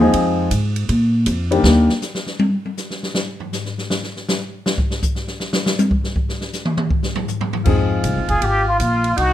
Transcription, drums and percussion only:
0.13 kick, ride
0.51 hi-hat pedal, ride
0.76 ride
0.89 kick, ride
1.26 kick, hi-hat pedal, ride
1.52 ride
1.64 snare
1.89 snare
2.02 snare, hi-hat pedal
2.15 snare
2.27 snare
2.39 high tom
2.65 high tom
2.77 snare, hi-hat pedal
2.90 snare
3.03 snare
3.15 snare
3.40 floor tom
3.53 snare, hi-hat pedal
3.65 snare
3.78 snare
3.90 snare
4.03 snare
4.16 snare
4.28 snare, hi-hat pedal
4.66 snare
4.78 kick
4.91 snare
5.02 kick, hi-hat pedal
5.15 snare
5.27 snare
5.40 snare
5.53 snare
5.66 snare
5.79 hi-hat pedal, high tom
5.91 kick
6.04 snare
6.16 kick
6.29 snare
6.41 snare
6.53 snare, hi-hat pedal
6.65 mid tom
6.77 mid tom
6.90 kick
7.03 snare
7.15 floor tom
7.28 floor tom, hi-hat pedal
7.41 floor tom
7.53 floor tom
7.65 kick, crash
8.04 kick, hi-hat pedal, ride
8.28 kick, ride
8.42 kick, ride
8.80 kick, hi-hat pedal, ride
9.04 ride
9.17 kick, ride

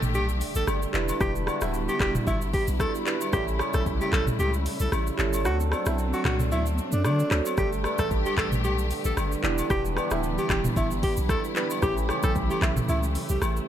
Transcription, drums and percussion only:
0.02 mid tom, shaker
0.15 high agogo, shaker
0.29 shaker
0.41 open hi-hat, shaker
0.55 shaker
0.67 cross-stick, high agogo, shaker
0.82 shaker
0.94 clap, shaker
1.09 high agogo, shaker
1.21 kick, cross-stick, shaker
1.36 shaker
1.47 cross-stick, high agogo, shaker
1.61 cross-stick, shaker
1.74 shaker
1.89 high agogo, shaker
2.00 kick, cross-stick, clap, shaker
2.15 mid tom, shaker
2.27 kick, high agogo, shaker
2.42 shaker
2.54 kick, open hi-hat, shaker
2.67 shaker
2.80 kick, cross-stick, high agogo, shaker
2.95 shaker
3.06 clap, shaker
3.21 high agogo, shaker
3.33 kick, cross-stick, shaker
3.48 shaker
3.59 cross-stick, high agogo, shaker
3.74 kick, cross-stick, shaker
3.86 kick, shaker
4.01 high agogo, shaker
4.12 kick, cross-stick, clap, shaker
4.27 mid tom, shaker
4.39 high agogo, shaker
4.54 shaker
4.66 open hi-hat, shaker
4.80 shaker
4.92 cross-stick, high agogo, shaker
5.07 shaker
5.19 clap, shaker
5.33 high agogo, shaker
5.45 cross-stick, shaker
5.60 shaker
5.72 cross-stick, high agogo, shaker
5.86 cross-stick, shaker
5.98 shaker
6.13 high agogo, shaker
6.25 cross-stick, clap, mid tom, shaker
6.40 mid tom, shaker
6.52 high agogo, shaker
6.66 shaker
6.78 shaker
6.92 shaker
7.05 cross-stick, high agogo, shaker
7.20 shaker
7.31 cross-stick, clap, shaker
7.46 high agogo, shaker
7.58 kick, cross-stick, shaker
7.73 shaker
7.84 cross-stick, high agogo, shaker
7.98 kick, cross-stick, shaker
8.11 kick, shaker
8.26 high agogo, shaker
8.37 kick, cross-stick, clap, shaker
8.52 mid tom, shaker
8.64 high agogo, shaker
8.79 shaker
8.91 open hi-hat, shaker
9.05 shaker
9.17 cross-stick, high agogo, shaker
9.32 shaker
9.44 clap, shaker
9.58 high agogo, shaker
9.70 kick, cross-stick, shaker
9.85 shaker
9.97 cross-stick, high agogo, shaker
10.11 cross-stick, shaker
10.23 shaker
10.38 high agogo, shaker
10.49 kick, cross-stick, clap, shaker
10.64 mid tom, shaker
10.76 kick, high agogo, shaker
10.91 shaker
11.03 kick, open hi-hat, shaker
11.17 shaker
11.29 kick, cross-stick, high agogo, shaker
11.44 shaker
11.56 clap, shaker
11.70 high agogo, shaker
11.82 kick, cross-stick, shaker
11.97 shaker
12.09 cross-stick, high agogo, shaker
12.23 kick, cross-stick, shaker
12.36 kick, shaker
12.50 high agogo, shaker
12.62 kick, cross-stick, clap, shaker
12.77 mid tom, shaker
12.89 high agogo, shaker
13.03 shaker
13.15 open hi-hat, shaker
13.29 shaker
13.42 cross-stick, high agogo, shaker
13.57 shaker

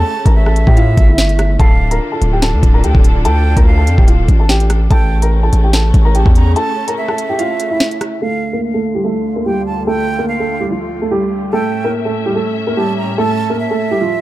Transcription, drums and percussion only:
0.26 kick, closed hi-hat
0.46 cross-stick
0.56 closed hi-hat
0.67 kick
0.77 closed hi-hat
0.97 kick, closed hi-hat
1.18 snare
1.29 closed hi-hat
1.39 cross-stick, closed hi-hat
1.60 kick, closed hi-hat
1.91 closed hi-hat
2.22 closed hi-hat
2.42 snare, closed hi-hat
2.63 kick, closed hi-hat
2.84 closed hi-hat
2.95 kick
3.04 closed hi-hat
3.25 closed hi-hat
3.57 kick, closed hi-hat
3.87 closed hi-hat
3.98 kick
4.08 closed hi-hat
4.28 kick, closed hi-hat
4.49 snare
4.60 closed hi-hat
4.70 cross-stick, closed hi-hat
4.91 kick, closed hi-hat
5.22 closed hi-hat
5.53 closed hi-hat
5.73 snare, closed hi-hat
5.94 kick, closed hi-hat
6.15 closed hi-hat
6.26 kick
6.35 closed hi-hat
6.56 closed hi-hat
6.88 closed hi-hat
7.08 cross-stick
7.18 closed hi-hat
7.39 closed hi-hat
7.60 closed hi-hat
7.80 snare
7.91 closed hi-hat
8.01 cross-stick, closed hi-hat

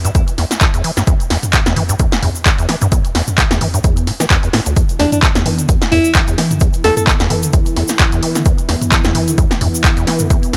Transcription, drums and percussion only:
0.05 closed hi-hat, shaker
0.15 kick, closed hi-hat, shaker
0.28 closed hi-hat, shaker
0.38 snare, open hi-hat
0.51 snare, closed hi-hat, shaker
0.61 kick, clap, closed hi-hat, shaker
0.74 closed hi-hat, shaker
0.84 open hi-hat
0.97 snare, closed hi-hat, shaker
1.07 kick, closed hi-hat, shaker
1.20 closed hi-hat, shaker
1.30 snare, open hi-hat
1.43 closed hi-hat, mid tom, shaker
1.53 kick, clap, closed hi-hat, shaker
1.66 snare, closed hi-hat, shaker
1.76 mid tom, open hi-hat
1.89 closed hi-hat, shaker
1.99 kick, closed hi-hat, shaker
2.12 snare, closed hi-hat, shaker
2.23 mid tom, open hi-hat
2.35 shaker
2.46 kick, clap, closed hi-hat, shaker
2.58 closed hi-hat, shaker
2.69 snare, open hi-hat
2.82 closed hi-hat, mid tom, shaker
2.92 kick, closed hi-hat, shaker
3.05 closed hi-hat, shaker
3.15 snare, open hi-hat
3.27 closed hi-hat, mid tom, shaker
3.38 kick, clap, closed hi-hat, shaker
3.51 snare, closed hi-hat, shaker
3.61 mid tom, open hi-hat
3.74 closed hi-hat, shaker
3.84 kick, closed hi-hat, shaker
3.97 closed hi-hat, shaker
4.07 snare, open hi-hat
4.20 snare, closed hi-hat, shaker
4.30 kick, clap, closed hi-hat, shaker
4.43 closed hi-hat, shaker
4.53 snare, open hi-hat
4.66 closed hi-hat, shaker
4.76 kick, closed hi-hat, shaker
4.89 closed hi-hat, shaker
5.00 snare, open hi-hat
5.12 closed hi-hat, mid tom, shaker
5.23 kick, clap, closed hi-hat, shaker
5.35 snare, closed hi-hat, shaker
5.46 mid tom, open hi-hat
5.59 closed hi-hat, shaker
5.69 kick, closed hi-hat, shaker
5.82 snare, closed hi-hat, shaker
5.92 mid tom, open hi-hat
6.04 shaker
6.14 kick, clap, closed hi-hat, shaker
6.28 closed hi-hat, shaker
6.38 snare, open hi-hat
6.51 closed hi-hat, mid tom, shaker
6.60 kick, closed hi-hat, shaker
6.73 closed hi-hat, shaker
6.84 snare, open hi-hat
6.97 closed hi-hat, mid tom, shaker
7.07 kick, clap, closed hi-hat, shaker
7.20 snare, closed hi-hat, shaker
7.30 mid tom, open hi-hat
7.43 closed hi-hat, shaker
7.53 kick, closed hi-hat, shaker
7.66 closed hi-hat, shaker
7.76 snare, open hi-hat
7.88 snare, closed hi-hat, shaker
7.99 kick, clap, closed hi-hat, shaker
8.12 closed hi-hat, shaker
8.23 open hi-hat
8.35 snare, closed hi-hat, shaker
8.45 kick, closed hi-hat, shaker
8.58 closed hi-hat, shaker
8.69 snare, open hi-hat
8.82 closed hi-hat, mid tom, shaker
8.92 kick, clap, closed hi-hat, shaker
9.04 snare, closed hi-hat, shaker
9.15 mid tom, open hi-hat
9.28 closed hi-hat, shaker
9.38 kick, closed hi-hat, shaker
9.51 snare, closed hi-hat, shaker
9.61 mid tom, open hi-hat
9.75 shaker
9.84 kick, clap, closed hi-hat, shaker
9.97 closed hi-hat, shaker
10.07 snare, open hi-hat
10.19 closed hi-hat, mid tom, shaker
10.30 kick, closed hi-hat, shaker
10.43 closed hi-hat, shaker
10.53 snare, open hi-hat

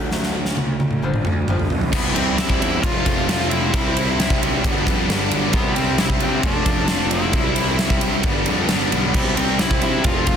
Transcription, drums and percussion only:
0.11 snare
0.23 snare
0.45 snare
0.57 high tom
0.80 high tom
0.91 mid tom
1.14 mid tom
1.25 mid tom
1.48 mid tom
1.59 floor tom
1.70 floor tom
1.81 floor tom
1.93 kick, crash
2.16 ride
2.38 snare, ride
2.50 kick
2.62 ride
2.83 kick, ride
3.06 kick, ride
3.29 snare, ride
3.41 snare
3.51 ride
3.74 kick, ride
3.97 ride
4.20 snare, ride
4.30 kick
4.43 ride
4.64 kick, ride
4.87 kick, ride
5.10 snare, ride
5.31 ride
5.53 kick, ride
5.76 ride
5.98 snare, ride
6.10 kick
6.20 ride
6.43 kick, ride
6.66 kick, ride
6.88 snare, ride
7.00 snare
7.11 ride
7.33 kick, ride
7.56 ride
7.79 snare, ride
7.90 kick
8.01 ride
8.23 kick, ride
8.46 ride
8.69 snare, ride
8.81 snare
8.92 ride
9.14 kick, crash
9.37 ride
9.59 snare, ride
9.71 kick
9.82 ride
10.04 kick, ride
10.27 kick, ride

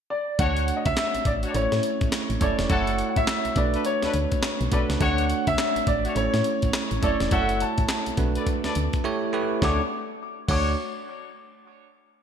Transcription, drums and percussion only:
0.39 kick, closed hi-hat
0.57 closed hi-hat
0.68 closed hi-hat
0.85 kick, closed hi-hat
0.97 snare, clap, closed hi-hat
1.15 closed hi-hat
1.25 kick, closed hi-hat
1.43 closed hi-hat
1.54 closed hi-hat
1.72 snare, closed hi-hat
1.83 closed hi-hat
2.01 kick, closed hi-hat
2.12 snare, clap, closed hi-hat
2.30 closed hi-hat
2.41 kick, closed hi-hat
2.59 snare, closed hi-hat
2.69 kick, closed hi-hat
2.87 closed hi-hat
2.98 closed hi-hat
3.16 kick, closed hi-hat
3.27 snare, clap, closed hi-hat
3.45 closed hi-hat
3.56 kick, closed hi-hat
3.74 closed hi-hat
3.85 closed hi-hat
4.03 snare, closed hi-hat
4.14 closed hi-hat
4.32 kick, closed hi-hat
4.43 snare, clap, closed hi-hat
4.61 closed hi-hat
4.72 kick, closed hi-hat
4.90 snare, closed hi-hat
5.00 kick, closed hi-hat
5.18 closed hi-hat
5.30 closed hi-hat
5.47 kick, closed hi-hat
5.58 snare, clap, closed hi-hat
5.76 closed hi-hat
5.87 kick, closed hi-hat
6.05 closed hi-hat
6.16 closed hi-hat
6.34 snare, closed hi-hat
6.44 closed hi-hat
6.62 kick, closed hi-hat
6.73 snare, clap, closed hi-hat
6.91 closed hi-hat
7.03 kick, closed hi-hat
7.20 snare, closed hi-hat
7.31 kick, closed hi-hat
7.49 closed hi-hat
7.60 closed hi-hat
7.78 kick, closed hi-hat
7.88 snare, clap, closed hi-hat
8.06 closed hi-hat
8.17 kick, closed hi-hat
8.35 closed hi-hat
8.47 kick, closed hi-hat
8.64 snare, closed hi-hat
8.75 closed hi-hat
8.93 kick, closed hi-hat
9.62 kick, snare
10.49 kick, crash

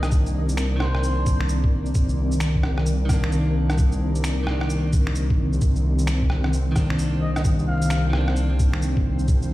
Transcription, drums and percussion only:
0.03 cross-stick, shaker
0.11 kick, shaker
0.26 shaker
0.49 shaker
0.57 finger snap, shaker
0.80 cross-stick
0.95 cross-stick
1.03 shaker
1.26 kick, shaker
1.41 finger snap
1.49 shaker
1.64 kick
1.86 shaker
1.94 kick, shaker
2.09 shaker
2.32 shaker
2.40 finger snap, shaker
2.55 kick
2.63 cross-stick
2.78 cross-stick
2.86 shaker
3.09 kick, cross-stick, shaker
3.24 finger snap
3.32 shaker
3.70 cross-stick, shaker
3.78 kick, shaker
3.92 shaker
4.15 shaker
4.24 finger snap, shaker
4.47 cross-stick
4.61 cross-stick
4.70 shaker
4.93 kick, shaker
5.07 finger snap
5.15 shaker
5.30 kick
5.53 shaker
5.61 kick, shaker
5.76 shaker
5.99 shaker
6.07 finger snap, shaker
6.22 kick
6.30 cross-stick
6.44 cross-stick
6.53 shaker
6.76 kick, cross-stick, shaker
6.90 finger snap
6.99 shaker
7.36 cross-stick, shaker
7.45 kick, shaker
7.59 shaker
7.82 shaker
7.90 finger snap, shaker
8.13 cross-stick
8.28 cross-stick
8.36 shaker
8.59 kick, shaker
8.73 finger snap
8.82 shaker
8.97 kick
9.19 shaker
9.28 kick, shaker
9.42 shaker

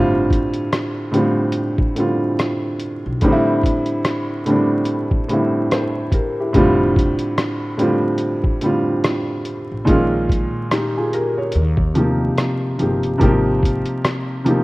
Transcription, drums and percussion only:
0.30 kick, closed hi-hat
0.54 closed hi-hat
0.73 cross-stick, closed hi-hat
1.14 closed hi-hat
1.52 closed hi-hat
1.78 kick
1.96 closed hi-hat
2.39 cross-stick, closed hi-hat
2.80 closed hi-hat
3.21 kick, closed hi-hat
3.63 kick, closed hi-hat
3.86 closed hi-hat
4.05 cross-stick, closed hi-hat
4.46 closed hi-hat
4.85 closed hi-hat
5.11 kick
5.29 closed hi-hat
5.71 cross-stick, closed hi-hat
6.12 kick, closed hi-hat
6.54 kick, closed hi-hat
6.96 kick, closed hi-hat
7.19 closed hi-hat
7.38 cross-stick, closed hi-hat
7.79 closed hi-hat
8.18 closed hi-hat
8.44 kick
8.61 closed hi-hat
9.04 cross-stick, closed hi-hat
9.45 closed hi-hat
9.87 kick, closed hi-hat
10.29 kick, closed hi-hat
10.71 cross-stick, closed hi-hat
11.13 closed hi-hat
11.52 closed hi-hat
11.77 kick
11.95 closed hi-hat
12.38 cross-stick, closed hi-hat
12.79 closed hi-hat
13.03 closed hi-hat
13.21 kick, closed hi-hat
13.63 kick, closed hi-hat
13.86 closed hi-hat
14.04 cross-stick, closed hi-hat
14.46 closed hi-hat

